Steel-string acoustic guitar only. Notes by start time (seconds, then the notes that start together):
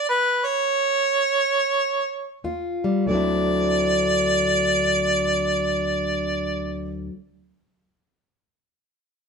2.44 D#2 F4
2.84 G3
3.06 D2 D3
3.11 F#3 C4
3.15 E4